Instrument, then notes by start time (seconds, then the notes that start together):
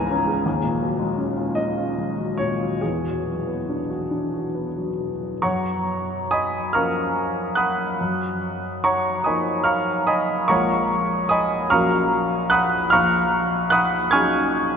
grand piano
Already playing: C#2 G#2 E3 B3 G#5 A#5
0.11 C#4
0.27 G#4
0.46 D#2
0.64 A#2
0.81 F#3
0.99 G#3
1.18 C#4
1.37 F4
1.55 C#4 D#5
1.78 F4
1.98 G#3
2.18 F#3
2.38 A#2 C#5
2.63 F#3
2.81 E2 G#4
3.04 B2
3.25 F#3
3.47 B3
3.69 D4
3.90 F#4
4.11 D4
4.34 F#4
4.55 B3
4.77 F#3
4.98 B2
5.21 F#3
5.42 F#2 C#5 F#5 A#5 C#6
6.31 D#5 G#5 B5 D#6
6.73 F3 A#3 C#4 A#4 F5 A#5 C#6 F6
7.55 F#5 B5 D#6 F#6
8.01 F#2
8.84 C#5 F#5 A#5 C#6
9.24 F3 A#3 D#4 A#4 D#5 G#5 B5 D#6
9.64 F5 A#5 C#6 F6
10.07 D#5 G#5 B5 D#6
10.48 A#1 G#3 A#3 F4 A#4 C#5 F#5 A#5 C#6
11.29 D#5 G#5 B5 D#6
11.70 A#1 F#3 C#4 F#4 A#4 F5 A#5 C#6 F6
12.50 F#5 B5 D#6 F#6
12.90 A#1 F5 A#5 C#6 F6
13.70 F#5 B5 D#6 F#6
14.11 F#3 C#4 D#4 G#4 G#5 C#6 F6 G#6